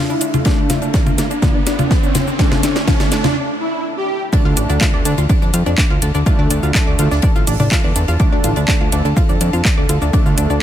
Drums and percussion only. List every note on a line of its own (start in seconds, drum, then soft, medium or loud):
0.10 shaker soft
0.21 closed hi-hat medium
0.21 ride medium
0.21 shaker medium
0.34 ride soft
0.34 low conga medium
0.34 shaker soft
0.45 kick loud
0.45 snare medium
0.45 ride medium
0.45 shaker soft
0.70 snare medium
0.70 closed hi-hat loud
0.70 ride medium
0.70 low conga medium
0.70 shaker medium
0.82 ride soft
0.82 shaker soft
0.94 kick loud
0.94 snare medium
0.94 snare loud
0.94 ride medium
0.94 shaker soft
1.07 low conga medium
1.07 shaker soft
1.18 snare medium
1.18 closed hi-hat medium
1.18 ride medium
1.18 shaker medium
1.31 ride soft
1.31 shaker soft
1.42 kick loud
1.42 snare medium
1.42 ride medium
1.42 low conga medium
1.42 shaker soft
1.66 snare medium
1.66 closed hi-hat loud
1.66 ride medium
1.66 shaker medium
1.79 ride soft
1.79 low conga medium
1.79 shaker soft
1.91 kick loud
1.91 snare loud
1.91 snare medium
1.91 ride medium
1.91 shaker soft
2.03 shaker soft
2.15 snare medium
2.15 closed hi-hat loud
2.15 ride medium
2.15 low conga medium
2.15 shaker medium
2.27 shaker soft
2.39 kick loud
2.39 snare medium
2.39 ride medium
2.39 shaker soft
2.52 snare medium
2.52 low conga medium
2.63 snare medium
2.63 closed hi-hat loud
2.63 ride medium
2.63 shaker medium
2.76 snare medium
2.76 shaker soft
2.88 kick loud
2.88 snare medium
2.88 snare loud
2.88 ride medium
2.88 low conga medium
2.88 shaker soft
3.00 snare medium
3.00 shaker soft
3.12 snare loud
3.12 closed hi-hat medium
3.12 ride medium
3.12 shaker medium
3.24 snare medium
3.24 low conga medium
3.24 shaker soft
4.33 kick loud
4.33 ride medium
4.33 shaker soft
4.57 closed hi-hat loud
4.57 ride medium
4.57 shaker medium
4.69 ride soft
4.69 shaker soft
4.81 kick loud
4.81 snare loud
4.81 clap loud
4.81 ride medium
4.81 shaker soft
5.05 closed hi-hat loud
5.05 ride medium
5.05 shaker medium
5.18 ride soft
5.18 shaker soft
5.29 kick loud
5.29 ride medium
5.29 shaker soft
5.42 shaker soft
5.54 closed hi-hat loud
5.54 ride medium
5.54 shaker medium
5.66 ride soft
5.66 shaker soft
5.78 kick loud
5.78 snare loud
5.78 clap loud
5.78 ride medium
5.78 shaker soft
6.02 closed hi-hat loud
6.02 ride medium
6.02 shaker medium
6.15 shaker soft
6.26 kick loud
6.26 ride medium
6.26 shaker soft
6.51 closed hi-hat loud
6.51 ride medium
6.51 shaker medium
6.63 shaker soft
6.75 kick loud
6.75 snare loud
6.75 clap loud
6.75 ride medium
6.75 shaker soft
6.99 closed hi-hat loud
6.99 ride medium
6.99 shaker medium
7.11 snare medium
7.11 shaker soft
7.22 kick loud
7.22 ride medium
7.22 shaker soft
7.36 shaker soft
7.47 closed hi-hat loud
7.47 open hi-hat medium
7.47 shaker medium
7.60 low conga medium
7.60 shaker soft
7.71 kick loud
7.71 snare loud
7.71 clap loud
7.71 ride loud
7.71 shaker soft
7.96 closed hi-hat loud
7.96 ride medium
7.96 shaker medium
8.08 ride soft
8.08 shaker soft
8.19 kick loud
8.19 ride medium
8.19 shaker soft
8.44 closed hi-hat loud
8.44 ride medium
8.44 shaker medium
8.56 ride soft
8.56 shaker soft
8.68 kick loud
8.68 snare loud
8.68 clap loud
8.68 ride medium
8.68 shaker soft
8.92 closed hi-hat loud
8.92 ride medium
8.92 shaker medium
9.05 ride soft
9.05 shaker soft
9.17 kick loud
9.17 ride medium
9.17 shaker soft
9.29 shaker soft
9.41 closed hi-hat loud
9.41 ride medium
9.41 shaker medium
9.53 ride soft
9.53 shaker soft
9.65 kick loud
9.65 snare loud
9.65 clap loud
9.65 ride medium
9.65 shaker soft
9.89 closed hi-hat loud
9.89 ride medium
9.89 shaker medium
10.02 shaker soft
10.13 kick loud
10.13 ride medium
10.13 shaker soft
10.26 shaker soft
10.38 closed hi-hat loud
10.38 ride medium
10.38 shaker medium
10.50 shaker soft